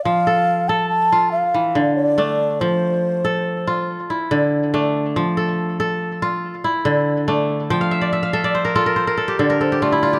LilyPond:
<<
  \new Staff \with { instrumentName = "Flute" } { \time 12/8 \key f \major \tempo 4. = 94 f''4. a''8 a''4 f''4. d''4. | c''2. r2. | r1. | r1 r8 c''8 d''4 | }
  \new Staff \with { instrumentName = "Kora" } { \time 12/8 \key f \major << { r1. | r1. | r1. | g''16 f''16 e''16 d''16 e''16 f''16 e''16 d''16 c''16 bes'16 a'16 bes'16 c''16 bes'16 a'16 g'16 a'16 bes'16 a'16 g'16 f'16 e'16 f'16 g'16 | } \\ { r8 a'4. r4. e4. d'4~ | d'8 r2. e'4. d'4~ | d'8 a'4. r4. e'4. d'4~ | d'8 r1 r4. | } >> }
  \new Staff \with { instrumentName = "Kora" } { \time 12/8 \key f \major f4 r8 a'4 f'8 r4 d4 a4 | f4 r8 a'4 f'8 r4 d4 a4 | f4 r8 a'4 f'8 r4 d4 a4 | f4 r8 a'4 f'8 r4 d4 a4 | }
>>